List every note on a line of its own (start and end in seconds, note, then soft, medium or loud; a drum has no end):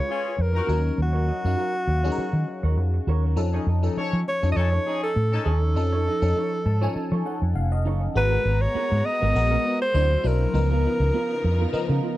0.00 0.71 G#3 medium
0.00 0.69 C#4 medium
0.00 0.71 F4 medium
0.00 0.69 A#4 medium
0.00 0.70 B4 medium
0.00 0.43 C#5 medium
0.00 0.73 C#5 medium
0.08 0.33 C#4 loud
0.08 0.25 F4 medium
0.08 0.33 F4 medium
0.08 0.24 G#4 medium
0.08 0.33 G#4 loud
0.08 0.22 C#5 medium
0.24 muted clean electric guitar stroke soft
0.37 0.59 F2 medium
0.37 muted clean electric guitar stroke soft
0.41 1.00 A#4 medium
0.53 0.79 D#4 medium
0.53 0.79 F#4 medium
0.53 0.79 A#4 loud
0.53 muted clean electric guitar stroke medium
0.67 0.89 D#2 medium
0.67 1.34 F#3 medium
0.67 1.35 C#4 medium
0.67 1.35 D#4 medium
0.67 0.84 F#4 medium
0.67 0.83 A#4 medium
0.67 1.35 A#4 medium
0.67 0.82 C#5 medium
0.83 0.95 F#4 soft
0.83 0.96 A#4 medium
0.83 0.97 C#5 medium
0.97 1.30 D#2 loud
0.97 muted clean electric guitar stroke soft
1.02 3.05 F#4 loud
1.13 1.26 F#4 medium
1.13 1.27 A#4 medium
1.13 1.28 C#5 medium
1.27 1.44 F#4 medium
1.27 1.44 A#4 medium
1.27 1.43 D#5 medium
1.43 1.54 F#2 medium
1.43 1.97 F#3 medium
1.43 1.97 C#4 medium
1.43 1.97 D#4 medium
1.43 1.97 F5 medium
1.43 muted clean electric guitar stroke medium
1.57 1.78 F#4 medium
1.57 1.74 A#4 medium
1.57 1.72 C#5 medium
1.74 muted clean electric guitar stroke soft
1.87 2.08 D#2 medium
1.87 muted clean electric guitar stroke soft
2.04 3.08 F#3 medium
2.04 3.08 C#4 medium
2.04 3.08 D#4 medium
2.04 2.16 F#4 medium
2.04 2.11 G#4 medium
2.04 2.17 A#4 medium
2.04 2.18 C#5 medium
2.12 3.12 A#4 medium
2.17 2.38 F#4 medium
2.17 2.34 A#4 medium
2.17 2.32 C#5 medium
2.17 muted fingered electric bass stroke soft
2.33 2.43 D#3 medium
2.33 muted clean electric guitar stroke soft
2.48 muted clean electric guitar stroke soft
2.63 2.77 D#2 medium
2.63 2.76 F#4 soft
2.63 2.77 A#4 medium
2.63 2.78 C#5 medium
2.77 2.98 F2 loud
2.77 muted clean electric guitar stroke soft
2.94 muted clean electric guitar stroke soft
3.07 3.37 D#2 medium
3.07 3.25 F#4 medium
3.07 3.24 A#4 medium
3.07 3.23 C#5 loud
3.24 3.38 F#4 medium
3.24 3.38 A#4 soft
3.24 3.38 C#5 medium
3.36 3.57 F2 loud
3.36 3.77 F3 medium
3.36 3.77 C#4 medium
3.36 3.77 D#4 medium
3.36 3.77 A4 loud
3.36 muted clean electric guitar stroke soft
3.53 3.64 C#4 medium
3.53 3.64 D#4 medium
3.53 3.66 D#4 medium
3.53 3.64 G#4 medium
3.53 3.67 A4 medium
3.53 3.69 C#5 medium
3.67 3.87 F2 medium
3.67 3.84 D#4 medium
3.67 3.84 A4 medium
3.67 3.84 D#5 medium
3.83 4.35 F3 medium
3.83 4.35 C#4 medium
3.83 3.95 C#4 medium
3.83 4.35 D#4 medium
3.83 3.95 D#4 medium
3.83 4.35 A4 medium
3.83 3.95 A4 medium
3.83 muted clean electric guitar stroke medium
3.97 4.21 C#4 loud
3.97 4.18 D#4 medium
3.97 4.21 A4 loud
3.97 4.14 A4 medium
3.97 4.21 C#5 loud
3.97 4.12 C#5 medium
3.97 muted fingered electric bass stroke soft
4.13 4.23 F3 medium
4.13 muted clean electric guitar stroke soft
4.28 4.50 C#5 loud
4.28 muted clean electric guitar stroke soft
4.42 4.53 F2 medium
4.42 5.46 F3 medium
4.42 5.47 C#4 medium
4.42 5.47 D#4 medium
4.42 4.55 D#4 soft
4.42 5.47 A4 medium
4.42 4.56 A4 medium
4.42 4.57 C#5 medium
4.52 4.69 D#4 medium
4.52 4.69 A4 loud
4.52 4.58 D#5 medium
4.56 4.77 F2 loud
4.56 4.69 C#4 medium
4.56 5.03 C#5 loud
4.56 muted clean electric guitar stroke soft
4.72 4.85 D#4 medium
4.72 4.86 A4 medium
4.72 4.86 C#5 medium
4.86 5.11 C#4 medium
4.86 5.03 D#4 medium
4.86 5.11 D#4 loud
4.86 5.11 G#4 loud
4.86 5.02 A4 medium
4.86 5.01 C#5 medium
5.02 5.44 A4 loud
5.02 muted clean electric guitar stroke soft
5.15 5.37 A2 loud
5.15 muted clean electric guitar stroke soft
5.32 5.56 C#4 medium
5.32 5.57 D#4 medium
5.32 5.57 A4 loud
5.32 muted clean electric guitar stroke soft
5.45 5.76 D#2 medium
5.45 5.62 D#4 medium
5.45 7.51 A4 medium
5.45 5.62 A4 medium
5.45 5.60 C#5 medium
5.62 5.74 D#4 soft
5.62 5.75 A4 medium
5.62 5.76 C#5 medium
5.76 6.07 F2 loud
5.76 6.16 F3 medium
5.76 6.16 C#4 medium
5.76 6.16 D#4 medium
5.76 6.17 A4 medium
5.76 muted clean electric guitar stroke soft
5.93 6.05 D#4 medium
5.93 6.06 A4 medium
5.93 6.08 C#5 medium
6.06 6.23 D#4 medium
6.06 6.22 A4 medium
6.06 6.22 D#5 medium
6.22 6.32 F2 medium
6.22 6.74 F3 medium
6.22 6.74 C#4 medium
6.22 6.74 D#4 medium
6.22 6.74 A4 medium
6.22 muted clean electric guitar stroke soft
6.36 6.57 D#4 medium
6.36 6.53 A4 medium
6.36 6.51 C#5 medium
6.53 muted clean electric guitar stroke soft
6.66 6.86 G#2 medium
6.66 6.81 A5 medium
6.66 muted clean electric guitar stroke soft
6.81 7.85 F3 medium
6.81 7.86 C#4 medium
6.81 7.86 D#4 medium
6.81 6.95 D#4 soft
6.81 6.96 A4 medium
6.81 6.96 C#5 medium
6.81 7.86 G#5 medium
6.96 7.24 A5 medium
6.96 muted fingered electric bass stroke soft
6.96 muted clean electric guitar stroke soft
7.12 7.21 F3 medium
7.12 7.24 D#4 medium
7.12 7.25 A4 medium
7.12 7.26 C#5 medium
7.25 7.42 D#4 medium
7.25 7.42 A4 medium
7.25 7.41 C#5 medium
7.25 7.54 F#5 medium
7.42 7.57 F2 medium
7.42 muted clean electric guitar stroke soft
7.55 7.86 F1 medium
7.55 7.71 F5 medium
7.72 8.12 D#5 medium
7.72 muted clean electric guitar stroke soft
7.85 8.07 F#1 medium
7.85 8.06 D#4 medium
7.85 8.02 A4 medium
7.85 8.00 C#5 medium
8.01 muted clean electric guitar stroke soft
8.14 8.36 G#1 loud
8.14 9.93 G#3 medium
8.14 9.21 G#3 medium
8.14 9.92 B3 medium
8.14 9.21 B3 medium
8.14 10.52 F#4 medium
8.14 9.21 F#4 medium
8.14 8.63 B4 loud
8.14 9.93 A#5 medium
8.14 9.22 A#5 medium
8.14 muted clean electric guitar stroke soft
8.31 8.44 B3 medium
8.31 8.45 F#4 medium
8.31 8.47 A#4 medium
8.45 8.66 G#1 medium
8.45 8.61 F#4 medium
8.61 9.07 C#5 loud
8.61 muted clean electric guitar stroke soft
8.75 8.96 B3 medium
8.75 8.92 F#4 medium
8.75 8.90 A#4 medium
8.75 muted fingered electric bass stroke soft
8.91 9.01 G#2 medium
8.91 muted clean electric guitar stroke medium
9.05 9.81 D#5 loud
9.05 muted clean electric guitar stroke soft
9.22 9.31 G#1 medium
9.22 9.34 B3 medium
9.22 9.35 F#4 medium
9.22 9.35 A#4 medium
9.35 9.55 A#1 medium
9.35 9.95 G#3 medium
9.35 9.95 B3 medium
9.35 9.95 F#4 medium
9.35 9.95 A#4 medium
9.35 muted clean electric guitar stroke soft
9.51 9.64 B3 medium
9.51 9.65 F#4 medium
9.51 9.66 A#4 medium
9.65 9.81 B3 medium
9.65 9.82 F#4 medium
9.65 9.80 A#4 medium
9.82 10.29 C5 loud
9.82 muted clean electric guitar stroke soft
9.94 10.15 D2 medium
9.94 10.54 D3 medium
9.94 10.21 F#3 medium
9.94 10.54 C4 medium
9.94 10.21 D4 medium
9.94 10.21 E4 medium
9.94 10.54 E4 medium
9.94 10.21 C5 medium
9.94 muted clean electric guitar stroke soft
10.11 muted clean electric guitar stroke soft
10.23 10.45 B1 medium
10.23 10.50 F#3 medium
10.23 10.50 D4 medium
10.23 10.51 E4 medium
10.23 12.05 A#4 loud
10.23 10.51 C5 medium
10.41 muted clean electric guitar stroke soft
10.53 10.85 C#2 loud
10.53 12.17 C#3 medium
10.53 11.60 F3 medium
10.53 12.17 B3 medium
10.53 11.60 B3 medium
10.53 12.17 D#4 medium
10.53 11.60 D#4 medium
10.53 12.17 F4 medium
10.53 12.17 A#4 medium
10.53 11.60 A#4 medium
10.53 muted clean electric guitar stroke soft
10.70 10.83 B3 medium
10.70 10.84 F4 medium
10.70 10.86 A#4 medium
10.84 11.01 B3 medium
10.84 11.00 F4 medium
10.84 11.00 B4 medium
11.00 11.09 C#2 loud
11.00 muted clean electric guitar stroke soft
11.14 11.34 B3 medium
11.14 11.30 F4 medium
11.14 11.29 A#4 medium
11.30 muted clean electric guitar stroke soft
11.44 11.65 F2 medium
11.44 muted clean electric guitar stroke soft
11.59 11.72 B3 medium
11.59 11.72 F4 medium
11.59 11.73 A#4 medium
11.73 12.17 F3 loud
11.73 12.17 B3 medium
11.73 12.17 D#4 medium
11.73 12.17 A#4 medium
11.73 muted clean electric guitar stroke soft
11.73 muted fingered electric bass stroke soft
11.88 11.99 C#3 medium
11.88 12.01 B3 medium
11.88 12.02 F4 medium
11.88 12.03 A#4 medium
12.02 12.17 B3 medium
12.02 12.17 F4 medium
12.02 12.17 A#4 medium